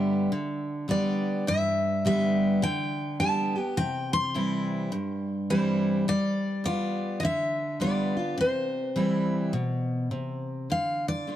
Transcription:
0.00 0.27 G2 medium
0.00 0.30 D3 medium
0.00 0.30 G3 medium
0.00 0.30 B3 medium
0.00 0.31 G4 loud
0.00 0.85 E5 medium
0.32 0.87 D3 loud
0.88 1.44 D3 medium
0.88 1.45 G3 loud
0.88 1.45 B3 medium
0.88 1.45 G4 loud
0.88 1.49 D5 medium
1.47 2.58 G2 medium
1.47 2.05 E5 loud
2.05 2.60 D3 medium
2.05 2.61 G3 loud
2.05 2.61 B3 loud
2.05 2.61 G4 loud
2.05 2.63 E5 medium
2.62 3.19 D3 loud
2.62 3.19 G5 loud
3.20 3.55 D3 medium
3.20 3.55 G3 medium
3.20 3.55 B3 loud
3.20 3.54 G4 loud
3.20 3.62 A5 medium
3.56 3.77 B3 medium
3.56 3.76 G4 medium
3.62 3.73 G5 medium
3.77 4.88 C3 loud
3.77 4.13 G5 loud
4.13 5.54 C6 loud
4.34 4.90 E3 medium
4.34 4.91 G3 medium
4.34 4.91 C4 loud
4.34 4.91 E4 loud
4.92 6.03 G2 loud
5.50 6.06 E3 medium
5.50 6.06 G3 medium
5.50 6.06 C4 loud
5.50 6.06 E4 medium
5.50 6.04 C5 medium
6.08 6.63 G3 loud
6.08 6.64 D5 loud
6.64 7.20 G3 medium
6.64 7.21 B3 medium
6.64 7.22 F4 medium
6.64 7.20 D5 loud
7.20 8.34 D3 loud
7.20 7.24 D#5 medium
7.25 7.78 E5 medium
7.80 8.15 G3 medium
7.80 8.16 B3 loud
7.80 8.16 F4 loud
7.80 8.35 D5 medium
8.17 8.39 B3 medium
8.17 8.38 F4 medium
8.38 9.50 C3 medium
8.38 10.09 C5 medium
8.96 9.52 E3 medium
8.96 9.52 G3 medium
8.96 9.52 C4 medium
8.96 9.53 E4 loud
9.53 10.09 B2 loud
10.11 10.67 C3 medium
10.70 11.26 D3 medium
10.70 11.08 F5 loud
11.08 11.36 D5 medium
11.27 11.36 D3 soft
11.27 11.36 A3 soft
11.27 11.36 D4 medium
11.27 11.36 F4 medium

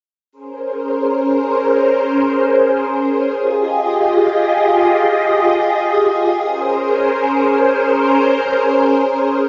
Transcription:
0.32 3.33 C#4 medium
0.32 9.40 G#4 medium
0.32 3.33 A#4 medium
0.32 3.33 C5 medium
3.36 6.37 F4 medium
3.36 6.37 G4 medium
3.36 6.37 D#5 medium
6.40 9.41 C#4 medium
6.40 9.41 A#4 medium
6.40 9.41 C5 medium
9.43 9.49 F4 medium
9.43 9.49 G4 medium
9.43 9.49 G#4 medium
9.43 9.49 D#5 medium

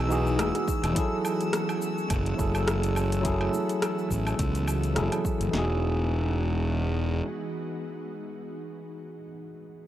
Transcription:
0.00 0.39 B1 medium
0.00 0.09 E3 medium
0.00 5.50 E3 medium
0.00 0.93 G#3 medium
0.00 0.93 B3 medium
0.00 0.10 D#4 medium
0.00 0.93 D#4 medium
0.00 0.11 F#4 medium
0.00 5.50 F#4 medium
0.00 0.12 G#4 medium
0.00 5.55 E6 medium
0.09 0.19 E3 medium
0.09 0.20 D#4 medium
0.09 0.20 F#4 medium
0.09 0.21 G#4 medium
0.09 shaker medium
0.27 shaker soft
0.39 0.51 E1 loud
0.39 cross-stick loud
0.39 closed hi-hat medium
0.39 high conga medium
0.39 low woodblock medium
0.39 shaker soft
0.55 cross-stick soft
0.55 closed hi-hat soft
0.55 shaker soft
0.68 kick medium
0.68 shaker medium
0.84 0.93 E1 loud
0.84 closed hi-hat soft
0.84 low woodblock medium
0.84 shaker soft
0.93 2.34 F#3 medium
0.93 5.49 A3 medium
0.93 3.22 C#4 medium
0.93 2.35 E4 medium
0.93 kick loud
0.93 closed hi-hat medium
0.93 shaker soft
0.97 2.36 G#4 medium
0.97 2.38 A4 medium
1.25 low woodblock medium
1.25 shaker medium
1.41 closed hi-hat soft
1.41 shaker soft
1.53 cross-stick medium
1.53 closed hi-hat medium
1.53 shaker soft
1.69 low woodblock medium
1.69 shaker soft
1.82 shaker medium
1.98 shaker soft
2.10 2.32 F#1 medium
2.10 kick loud
2.10 closed hi-hat medium
2.10 low woodblock medium
2.10 shaker soft
2.26 closed hi-hat soft
2.37 3.48 F#1 medium
2.37 2.48 F#3 medium
2.37 2.48 E4 medium
2.37 2.49 G#4 medium
2.37 2.49 A4 medium
2.37 kick loud
2.37 shaker medium
2.55 low woodblock medium
2.55 shaker soft
2.68 cross-stick loud
2.68 closed hi-hat medium
2.68 shaker soft
2.83 closed hi-hat soft
2.83 shaker soft
2.96 low woodblock medium
2.96 shaker medium
3.12 closed hi-hat soft
3.12 shaker soft
3.21 4.63 F#3 medium
3.21 4.64 E4 medium
3.21 kick loud
3.21 closed hi-hat medium
3.21 shaker soft
3.26 5.51 B3 medium
3.26 4.65 G#4 medium
3.26 4.66 A4 medium
3.41 low woodblock medium
3.54 shaker medium
3.69 closed hi-hat soft
3.69 shaker soft
3.82 cross-stick medium
3.82 closed hi-hat medium
3.82 low woodblock medium
3.82 shaker soft
3.98 shaker soft
4.11 4.32 A1 medium
4.11 kick medium
4.11 shaker medium
4.27 low woodblock medium
4.27 shaker soft
4.39 4.98 C#2 medium
4.39 kick loud
4.39 closed hi-hat medium
4.39 shaker soft
4.55 closed hi-hat soft
4.55 shaker soft
4.68 low woodblock medium
4.68 shaker medium
4.83 closed hi-hat soft
4.83 shaker soft
4.94 5.08 F#1 medium
4.94 5.49 F#3 medium
4.94 5.50 E4 medium
4.94 5.51 G#4 medium
4.94 5.51 A4 medium
4.94 cross-stick medium
4.94 closed hi-hat medium
4.94 shaker soft
5.12 cross-stick soft
5.12 closed hi-hat soft
5.12 low woodblock medium
5.12 shaker soft
5.25 kick loud
5.25 shaker medium
5.41 5.50 F#1 medium
5.41 closed hi-hat soft
5.41 shaker soft
5.48 9.17 E3 medium
5.48 9.20 D#4 medium
5.53 7.21 E1 medium
5.53 8.58 E3 medium
5.53 8.58 G#3 medium
5.53 8.58 B3 medium
5.53 8.58 D#4 medium
5.53 9.24 F#4 medium
5.53 8.59 F#4 medium
5.53 snare medium
5.58 9.27 G#4 medium

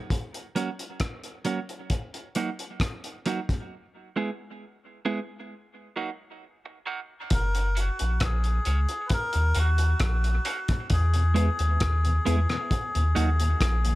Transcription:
0.10 kick loud
0.10 closed hi-hat medium
0.34 closed hi-hat soft
0.56 0.69 F#3 medium
0.56 0.69 A#3 medium
0.56 0.69 C#4 medium
0.56 0.69 F#4 medium
0.56 closed hi-hat soft
0.79 closed hi-hat soft
1.00 kick loud
1.00 cross-stick loud
1.00 closed hi-hat medium
1.24 closed hi-hat soft
1.45 1.58 F#3 medium
1.45 1.59 A#3 medium
1.45 1.59 C#4 medium
1.45 1.59 F#4 medium
1.45 closed hi-hat medium
1.69 closed hi-hat soft
1.90 kick loud
1.90 closed hi-hat loud
2.14 closed hi-hat soft
2.35 2.49 F#3 medium
2.35 2.49 A#3 medium
2.35 2.49 D#4 medium
2.35 2.50 F#4 medium
2.35 closed hi-hat medium
2.59 closed hi-hat soft
2.80 kick loud
2.80 cross-stick loud
2.80 closed hi-hat medium
3.04 closed hi-hat soft
3.26 3.39 F#3 medium
3.26 3.39 A#3 medium
3.26 3.40 D#4 medium
3.26 3.40 F#4 medium
3.26 closed hi-hat medium
3.49 kick medium
3.49 closed hi-hat medium
4.16 4.29 G#3 medium
4.16 4.29 B3 medium
4.16 4.29 E4 medium
4.16 4.30 G#4 medium
5.05 5.19 G#3 medium
5.05 5.19 B3 medium
5.05 5.19 E4 medium
5.05 5.19 G#4 medium
5.96 6.09 F#3 medium
5.96 6.09 A#3 medium
5.96 6.10 D#4 medium
5.96 6.10 F#4 medium
6.66 muted clean electric guitar stroke soft
6.86 6.99 F#3 medium
6.86 6.99 A#3 medium
6.86 7.00 D#4 medium
6.86 6.99 F#4 medium
7.30 7.90 F#1 loud
7.30 7.79 A#4 loud
7.30 kick loud
7.30 closed hi-hat medium
7.55 closed hi-hat soft
7.76 7.89 F#3 medium
7.76 7.89 A#3 medium
7.76 7.89 C#4 medium
7.76 7.89 F#4 medium
7.76 8.24 F#4 loud
7.76 closed hi-hat medium
7.99 8.19 A#1 medium
7.99 closed hi-hat medium
8.20 8.60 A#1 medium
8.20 9.08 G#4 medium
8.20 kick loud
8.20 cross-stick loud
8.20 closed hi-hat loud
8.44 closed hi-hat soft
8.65 8.86 C#2 medium
8.65 8.79 F#3 medium
8.65 8.79 A#3 medium
8.65 8.79 C#4 medium
8.65 8.79 F#4 medium
8.65 closed hi-hat medium
8.89 closed hi-hat soft
9.06 9.12 B4 medium
9.06 closed hi-hat loud
9.10 9.58 A#4 loud
9.10 kick loud
9.33 9.53 D#2 medium
9.33 closed hi-hat medium
9.55 9.95 D#2 loud
9.55 9.69 F#3 medium
9.55 9.69 A#3 medium
9.55 9.69 D#4 medium
9.55 9.69 F#4 medium
9.55 closed hi-hat medium
9.59 10.01 F#4 loud
9.78 closed hi-hat medium
10.00 10.39 A#1 loud
10.00 10.87 F#4 medium
10.00 kick loud
10.00 cross-stick loud
10.00 closed hi-hat medium
10.24 closed hi-hat soft
10.45 10.59 F#3 medium
10.45 10.59 A#3 medium
10.45 10.56 A#3 medium
10.45 10.59 D#4 medium
10.45 10.56 D#4 medium
10.45 10.59 F#4 medium
10.45 closed hi-hat medium
10.68 kick loud
10.68 closed hi-hat medium
10.90 11.50 E2 loud
10.90 13.95 G#4 loud
10.90 kick loud
10.90 closed hi-hat medium
11.14 11.24 E2 soft
11.14 11.24 B2 soft
11.14 closed hi-hat soft
11.34 11.48 G#3 medium
11.34 11.46 G#3 medium
11.34 11.48 B3 medium
11.34 11.46 B3 medium
11.34 11.49 E4 medium
11.34 11.46 E4 medium
11.34 11.49 G#4 medium
11.34 closed hi-hat medium
11.59 11.78 D#2 medium
11.59 closed hi-hat soft
11.80 12.20 D#2 loud
11.80 kick loud
11.80 cross-stick loud
11.80 closed hi-hat loud
12.05 12.14 E2 medium
12.05 12.14 B2 medium
12.05 closed hi-hat soft
12.25 12.47 E2 loud
12.25 12.39 G#3 medium
12.25 12.36 G#3 medium
12.25 12.39 B3 medium
12.25 12.36 B3 medium
12.25 12.39 E4 medium
12.25 12.36 E4 medium
12.25 12.39 G#4 medium
12.25 closed hi-hat medium
12.49 12.58 E2 medium
12.49 12.58 B2 medium
12.49 cross-stick medium
12.49 closed hi-hat soft
12.71 kick loud
12.71 closed hi-hat medium
12.95 13.04 D#2 medium
12.95 13.14 D#2 loud
12.95 13.04 A#2 medium
12.95 closed hi-hat medium
13.15 13.55 D#2 medium
13.15 13.28 F#3 medium
13.15 13.26 F#3 medium
13.15 13.29 A#3 medium
13.15 13.26 A#3 medium
13.15 13.29 D#4 medium
13.15 13.26 D#4 medium
13.15 13.29 F#4 medium
13.15 closed hi-hat medium
13.40 13.49 D#2 medium
13.40 13.49 A#2 medium
13.40 closed hi-hat medium
13.61 13.95 A#1 loud
13.61 kick medium
13.61 cross-stick loud
13.61 closed hi-hat loud
13.85 13.94 D#2 medium
13.85 13.94 A#2 medium
13.85 closed hi-hat medium

